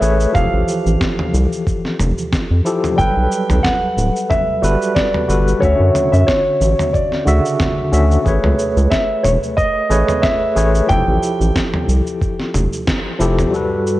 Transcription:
Already playing: tine electric piano G#4 B4 C#5, grand piano E5
0.00 analog synth bass A1, tine electric piano A3 G#4 B4 C#5, shaker
0.20 shaker
0.32 analog synth bass F1, tine electric piano E3 F3 G4, grand piano F5, kick, mid tom, shaker
0.37 tine electric piano A4
0.53 analog synth bass A1
0.68 shaker
0.86 analog synth bass A1, shaker
1.01 kick, snare, shaker
1.19 mid tom
1.34 analog synth bass C2, shaker
1.52 shaker
1.67 kick, shaker
1.85 snare
1.99 analog synth bass F1, mid tom, shaker
2.18 shaker
2.32 kick, snare, shaker
2.51 analog synth bass F2
2.64 tine electric piano F3 E4 G4 A4, shaker
2.84 mid tom, shaker
2.96 analog synth bass G1, tine electric piano F#3 G3 A4, grand piano G5, kick, shaker
3.01 tine electric piano B4
3.17 analog synth bass B1
3.32 shaker
3.50 analog synth bass B1, mid tom, shaker
3.63 grand piano F#5, kick, snare, shaker
3.97 analog synth bass D1, shaker
4.16 shaker
4.30 grand piano E5, kick, mid tom, shaker
4.62 analog synth bass G1, tine electric piano G3 F#4 A4 B4, shaker
4.82 shaker
4.95 grand piano D5, kick, snare, shaker
5.14 mid tom
5.28 analog synth bass G1, tine electric piano G3 F#4 A4 B4, shaker
5.48 shaker
5.60 analog synth bass D2, tine electric piano D3 C#4 F#4, grand piano C#5, kick, shaker
5.65 tine electric piano E5
5.80 analog synth bass F#2
5.95 mid tom, shaker
6.12 analog synth bass F#2, grand piano E5, shaker
6.27 grand piano C#5, kick, snare, shaker
6.61 analog synth bass A1, shaker
6.79 mid tom, shaker
6.93 grand piano D5, kick, shaker
7.12 snare
7.25 analog synth bass D2, tine electric piano C#3 D3 F#4 E5, shaker
7.46 shaker
7.60 kick, snare, mid tom, shaker
7.92 analog synth bass D2, tine electric piano D3 C#4 F#4 E5, shaker
8.11 shaker
8.23 analog synth bass A1, tine electric piano A3 G#4 B4, kick, shaker
8.28 tine electric piano C#5
8.44 analog synth bass C#2, mid tom
8.59 shaker
8.77 analog synth bass C#2, shaker
8.91 grand piano E5, kick, snare, shaker
9.24 analog synth bass E1, grand piano C#5, mid tom, shaker
9.43 shaker
9.57 grand piano D#5, kick, shaker
9.89 analog synth bass A1, tine electric piano A3 G#4 B4 C#5, shaker
10.09 mid tom, shaker
10.22 grand piano E5, kick, snare, shaker
10.55 analog synth bass A1, tine electric piano A3 G#4 B4 C#5, shaker
10.75 shaker
10.87 analog synth bass F1, tine electric piano F3 E4 G4, grand piano G5, kick, mid tom, shaker
10.92 tine electric piano A4
11.07 analog synth bass A1
11.23 shaker
11.40 analog synth bass A1, shaker
11.56 kick, snare, shaker
11.74 mid tom
11.88 analog synth bass C2, shaker
12.07 shaker
12.22 kick, shaker
12.40 snare
12.54 analog synth bass F1, mid tom, shaker
12.73 shaker
12.87 kick, snare, shaker
13.19 analog synth bass F1, tine electric piano F3 E4 G4 A4, shaker
13.39 mid tom, shaker
13.51 string machine G2 F#4 A4 B4, tine electric piano G3 F#4 A4, shaker
13.56 tine electric piano B4
13.87 shaker

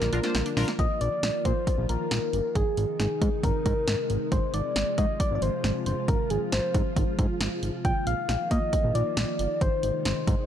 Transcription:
Already playing: string machine D3 F3 A#3 F4, soft synth lead A#4
0.02 analog synth bass A#1, synth pluck A#3, snare, closed hi-hat
0.13 analog synth bass A#1, synth pluck D3, analog polysynth D4 F4 A#4, closed hi-hat
0.23 synth pluck A#3, analog polysynth D4 F4 C5, snare, closed hi-hat
0.35 analog synth bass A#1, synth pluck D3, snare, closed hi-hat
0.46 synth pluck D4, closed hi-hat
0.57 analog synth bass A#1, synth pluck D3, analog polysynth D4 F4 A#4, snare, open hi-hat
0.68 synth pluck A#3, snare, closed hi-hat
0.79 analog synth bass A#1, string machine D#3 F3 A#3 F4, soft synth lead D#5, kick, closed hi-hat
1.01 analog synth bass A#1, soft synth lead D5, closed hi-hat
1.23 analog synth bass A#1, snare, closed hi-hat
1.45 analog synth bass A#2, soft synth lead C5, kick, closed hi-hat
1.67 kick, closed hi-hat
1.78 analog synth bass A#1
1.89 analog synth bass A#1, soft synth lead A#4, closed hi-hat
2.11 analog synth bass A#1, snare, closed hi-hat
2.33 analog synth bass G1, closed hi-hat
2.55 analog synth bass G#1, string machine C3 G#3 D#4, soft synth lead G#4, kick, closed hi-hat
2.77 analog synth bass G#1, closed hi-hat
3.00 analog synth bass G#1, soft synth lead G#4, snare, closed hi-hat
3.22 analog synth bass G#2, kick, closed hi-hat
3.43 analog synth bass G#1, soft synth lead A#4, kick, closed hi-hat
3.66 analog synth bass G#2, soft synth lead A#4, kick, closed hi-hat
3.88 analog synth bass G#1, snare, closed hi-hat
4.10 analog synth bass G#1, closed hi-hat
4.32 analog synth bass G#1, string machine F3 F4, soft synth lead C5, kick, closed hi-hat
4.54 analog synth bass G#1, soft synth lead D5, closed hi-hat
4.76 analog synth bass G#1, snare, closed hi-hat
4.98 analog synth bass G#2, soft synth lead D#5, kick, closed hi-hat
5.20 soft synth lead D5, kick, closed hi-hat
5.31 analog synth bass G#1
5.35 soft synth lead D5
5.42 analog synth bass G#1, soft synth lead C5, closed hi-hat
5.64 analog synth bass G#1, snare, closed hi-hat
5.86 analog synth bass G1, soft synth lead C5, closed hi-hat
6.08 analog synth bass G#1, soft synth lead A#4, kick, closed hi-hat
6.30 analog synth bass G#1, soft synth lead G#4, closed hi-hat
6.52 analog synth bass G#1, soft synth lead C5, snare, closed hi-hat
6.75 analog synth bass G#2, kick, closed hi-hat
6.96 analog synth bass G#1, kick, closed hi-hat
7.19 analog synth bass G#2, kick, closed hi-hat
7.41 analog synth bass G#1, snare, closed hi-hat
7.63 analog synth bass G#1, closed hi-hat
7.85 analog synth bass A#1, string machine D#3 A#3, soft synth lead G5, kick, closed hi-hat
8.07 analog synth bass A#1, soft synth lead F5, closed hi-hat
8.29 analog synth bass A#1, snare, closed hi-hat
8.51 analog synth bass A#2, soft synth lead D#5, kick, closed hi-hat
8.73 kick, closed hi-hat
8.84 analog synth bass A#1
8.95 analog synth bass A#1, soft synth lead D5, closed hi-hat
9.17 analog synth bass A#1, snare, closed hi-hat
9.39 analog synth bass G1, closed hi-hat
9.61 analog synth bass G#1, string machine C3 G#3 D#4, soft synth lead C5, kick, closed hi-hat
9.83 analog synth bass G#1, closed hi-hat
10.05 analog synth bass G#1, soft synth lead C5, snare, closed hi-hat
10.27 analog synth bass G#2, kick, closed hi-hat

